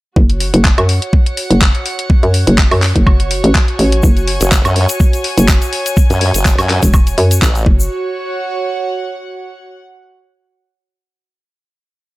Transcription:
0.16 F#1 F#4, kick
0.30 closed hi-hat
0.34 C#5
0.40 F#5, open hi-hat
0.54 F#1, closed hi-hat
0.65 kick, clap
0.78 F#2, closed hi-hat, high woodblock
0.89 open hi-hat
1.02 closed hi-hat
1.13 kick
1.26 closed hi-hat
1.37 open hi-hat
1.51 F#1, closed hi-hat
1.61 kick, clap
1.75 closed hi-hat
1.86 open hi-hat
1.99 closed hi-hat
2.10 kick
2.23 F#2, closed hi-hat
2.34 open hi-hat
2.47 F#1, closed hi-hat
2.58 kick, clap
2.71 F#2, open hi-hat, high woodblock
2.82 clap, open hi-hat
2.96 F#1, kick, closed hi-hat
3.07 kick, high woodblock
3.20 closed hi-hat
3.31 open hi-hat
3.44 A1, closed hi-hat
3.55 kick, clap
3.67 G#5, closed hi-hat
3.79 A1, open hi-hat
3.92 closed hi-hat
4.03 F#1, kick, shaker
4.17 closed hi-hat, shaker
4.28 open hi-hat
4.41 F#1, closed hi-hat, shaker
4.52 kick, clap, shaker
4.65 F#2, closed hi-hat, high woodblock, shaker
4.76 open hi-hat
4.89 closed hi-hat, shaker
5.00 kick, shaker
5.13 closed hi-hat, shaker
5.24 open hi-hat
5.38 F#1, closed hi-hat, shaker
5.48 kick, clap, shaker
5.62 closed hi-hat, shaker
5.73 open hi-hat
5.86 closed hi-hat, shaker
5.97 kick, shaker
6.10 F#2, closed hi-hat, shaker
6.21 open hi-hat
6.34 F#1, closed hi-hat, shaker
6.45 kick, clap, shaker
6.58 F#2, open hi-hat, high woodblock, shaker
6.69 clap, open hi-hat
6.83 E1, kick, closed hi-hat, shaker
6.93 kick, high woodblock, shaker
7.07 closed hi-hat, shaker
7.18 F#2, open hi-hat
7.31 closed hi-hat, shaker
7.42 A1, kick, clap, shaker
7.55 closed hi-hat, shaker
7.66 F#1 F#4, kick
7.74 C#5
7.80 shaker
8.06 F#5

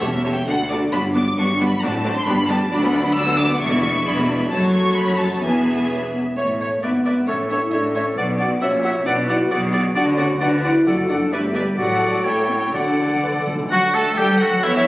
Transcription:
Already playing: A3
0.00 E1 E2 A3 C#4 G4 A4 C#5 E5
0.13 E5
0.25 A3 G4 A4 C#5
0.37 G5
0.47 D2 A3 D4 F#4 A4 D5 F#5
0.70 A3 F#4 A4 D5
0.92 G1 G2 F#3 B3 D4 F#4 D5 B5
1.15 B3 D4 F#4 D5 D6
1.37 G1 G2 B3 D4 F#4 D5 C#6
1.60 B3 D4 F#4 D5 B5
1.82 A1 A2 C4 D4 F#4 D5 A5
1.94 A5
2.04 C4 D4 F#4 D5
2.16 C6
2.27 G1 G2 G3 B3 D4 G4 D5 B5
2.48 B3 D4 G4 D5 A5
2.71 D2 F#3 D4 F#4 D5 B5
2.83 B3 D4 B4 F#5
2.94 D4 F#4 D5
3.05 B3 D4 B4 F#5
3.15 D2 D4 F#4 D5 E6
3.26 B3 D4 B4 F#5
3.38 D4 F#4 D5 D6
3.49 B3 D4 B4 F#5
3.60 E1 E2 G#3 D4 G#4 D5 E5 C#6
3.72 B3 E4 B4 E5
3.83 G#3 G#4 D5 E5
3.94 B3 E4 B4 E5
4.04 E1 E2 G#3 D4 G#4 D5 E5 B5
4.16 B3 E4 B4 E5
4.27 G#3 G#4 D5 E5
4.38 B3 E4 B4 E5
4.49 F#1 F#2 F#3 A3 C#4 F#4 A4 C#5 A5
4.72 C#6
4.96 B5
5.18 A5
5.42 E1 E2 B3 E4 G#4 B4 E5 G#5
5.89 C#4
6.13 B3
6.36 A1 A2 A3 C#5 E5
6.60 C#5 E5
6.82 G#1 G#2 B3 B4 D5 E5
7.05 B4 D5 E5
7.27 A1 A2 C#4 A4 C#5 E5
7.50 D4 A4 C#5 E5
7.62 E4
7.72 A1 A2 D4 A4 C#5 E5
7.95 C#4 A4 C#5 E5
8.17 B1 B2 B3 F#4 D5 F#5
8.39 F#4 D5 F#5
8.61 A#1 A#2 C#4 F#4 C#5 E5 F#5
8.84 F#4 E5 F#5
9.05 B1 B2 D4 F#4 B4 D5 F#5
9.28 E4 F#4 D5 F#5
9.39 F#4
9.51 B1 B2 F#4 G#4 D5 F#5
9.73 F#4 D5 F#5
9.95 D2 D3 D4 F#4 D5 F#5
10.17 C#4 F#4 D5 F#5
10.40 D2 D3 D4 F#4 B4 D5 F#5
10.63 E4 F#4 D5 F#5
10.87 F#1 F#2 F#4 A4 D5 F#5
11.09 D4 A4 D5 F#5
11.32 G1 G2 A3 G4 B4 D5 E5
11.54 G3 B4 D5 E5
11.77 A1 A2 F#3 F#4 A4 D5 F#5
12.24 A1 A2 A3 E4 A4 C#5 G5
12.50 C#4
12.74 D2 D3 D4 F#4 A4 D5 F#5
12.83 D3
12.91 D3
12.99 D3
13.07 D3
13.15 D3
13.23 D3 B4
13.31 D3
13.39 D3
13.47 D3 A4
13.55 D3
13.63 D3
13.71 D2 F#3 F#4 F#5
13.94 A3 A4 A5
14.17 G3 G4 A4 G5
14.39 F#3 F#4 F#5
14.62 E2 E3 E4 C#5 E5
14.74 E3 E4 E5

